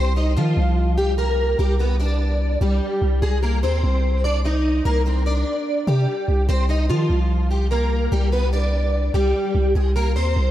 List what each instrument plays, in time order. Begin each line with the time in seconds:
Already playing: 808-style bass C2, steel-string acoustic guitar C4 C5
0.16 steel-string acoustic guitar D#4 D#5
0.36 808-style bass D#3, steel-string acoustic guitar F3 F4
0.57 808-style bass C2
0.98 steel-string acoustic guitar G3 G4
1.18 steel-string acoustic guitar A#3 A#4
1.59 808-style bass C2, steel-string acoustic guitar G3 G4
1.79 steel-string acoustic guitar B3 B4
2.00 steel-string acoustic guitar D4 D5
2.61 808-style bass C2, steel-string acoustic guitar G3 G4
3.02 808-style bass C2
3.22 808-style bass C2, steel-string acoustic guitar G#3 G#4
3.43 steel-string acoustic guitar A#3 A#4
3.63 808-style bass D#2, steel-string acoustic guitar C4 C5
3.83 808-style bass C2
4.24 steel-string acoustic guitar D4 D5
4.45 steel-string acoustic guitar D#4 D#5
4.85 808-style bass C2, steel-string acoustic guitar A#3 A#4
5.06 steel-string acoustic guitar C4 C5
5.26 steel-string acoustic guitar D4 D5
5.87 808-style bass C3, steel-string acoustic guitar G3 G4
6.28 808-style bass C2
6.49 808-style bass C2, steel-string acoustic guitar C4 C5
6.69 steel-string acoustic guitar D#4 D#5
6.89 808-style bass D#3, steel-string acoustic guitar F3 F4
7.10 808-style bass C2
7.51 steel-string acoustic guitar G3 G4
7.71 steel-string acoustic guitar A#3 A#4
8.12 808-style bass C2, steel-string acoustic guitar G3 G4
8.32 steel-string acoustic guitar B3 B4
8.53 steel-string acoustic guitar D4 D5
9.14 808-style bass C2, steel-string acoustic guitar G3 G4
9.55 808-style bass C2
9.75 808-style bass C2, steel-string acoustic guitar G#3 G#4
9.96 steel-string acoustic guitar A#3 A#4
10.16 808-style bass D#2, steel-string acoustic guitar C4 C5
10.36 808-style bass C2